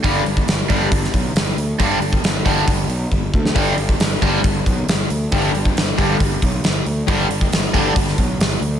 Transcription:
<<
  \new Staff \with { instrumentName = "Overdriven electric guitar" } { \clef bass \time 4/4 \key g \major \tempo 4 = 136 <g, d g>8 r4 <g, d g>8 r2 | <g, d g>8 r4 <g, d g>8 r2 | <g, d g>8 r4 <g, d g>8 r2 | <g, d g>8 r4 <g, d g>8 r2 |
<g, d g>8 r4 <g, d g>8 r2 | }
  \new Staff \with { instrumentName = "Overdriven electric guitar" } { \clef bass \time 4/4 \key g \major <g, d g>8 r4 <g, d g>8 r2 | <g, d g>8 r4 <g, d g>8 r2 | <g, d g>8 r4 <g, d g>8 r2 | <g, d g>8 r4 <g, d g>8 r2 |
<g, d g>8 r4 <g, d g>8 r2 | }
  \new Staff \with { instrumentName = "Picked electric bass" } { \clef bass \time 4/4 \key g \major g,,8 g,,8 g,,8 g,,8 g,,8 b,,8 g,,8 d,8 | g,,8 g,,8 g,,8 g,,8 g,,8 b,,8 g,,8 d,8 | g,,8 g,,8 g,,8 g,,8 g,,8 b,,8 g,,8 d,8 | g,,8 g,,8 g,,8 g,,8 g,,8 b,,8 g,,8 d,8 |
g,,8 g,,8 g,,8 g,,8 g,,8 b,,8 g,,8 d,8 | }
  \new DrumStaff \with { instrumentName = "Drums" } \drummode { \time 4/4 <hho bd>8 hho16 bd16 <hho sn>8 <hho bd>8 <hho bd>16 sn16 <hho bd>8 <hho sn>8 hho8 | <hho bd>8 hho16 bd16 <hho sn>8 <hho bd>8 <hho bd>8 hho8 bd8 bd16 sn16 | <hho bd>8 hho16 bd16 <hho sn>8 <hho bd>8 <hho bd>8 <hho bd>8 <hho sn>8 hho8 | <hho bd>8 hho16 bd16 <hho sn>8 <hho bd>8 <hho bd>8 <hho bd>8 <hho sn>8 hho8 |
<hho bd>8 hho16 bd16 <hho sn>8 <hho bd>8 <hho bd>16 sn16 <hho bd>8 <hho sn>8 hho8 | }
>>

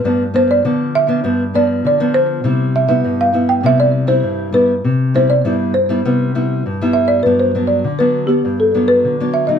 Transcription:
<<
  \new Staff \with { instrumentName = "Marimba" } { \time 4/4 \key c \major \tempo 4 = 100 b'8 c''16 d''8. e''4 d''8 d''8 c''8~ | c''8 e''16 e''8 f''8 g''16 e''16 d''8 c''8. b'8~ | b'8 c''16 d''8. c''2 e''16 d''16 | \key g \major b'16 c''8 d''8 b'8 g'8 a'8 b'8. e''16 ees''16 | }
  \new Staff \with { instrumentName = "Nylon-string guitar" } { \time 4/4 \key c \major << { <f b d'>16 r16 <f b d'>8 <f b d'>8. <f b d'>16 <f b d'>16 r16 <f b d'>8. <f b d'>8. | <g e'>8. <g b e'>8. <g b e'>8 <g b e'>8. <g e'>8. <g b e'>16 r16 | r8 <g b e'>16 r16 <g b e'>8 r16 <g b e'>16 <g b e'>8 <g b e'>8 r16 <g b e'>8. | \key g \major <fis b d'>8 <fis b d'>8 r16 <fis b d'>8 <b d'>8. <fis b d'>8. <fis b d'>8 <fis a ees'>16 | } \\ { g,4 d4 g,4 d4 | c4 g,4 c4 g,4 | c4 g,4 c4 g,4 | g,4 d4 g,4 d4 | } >> }
>>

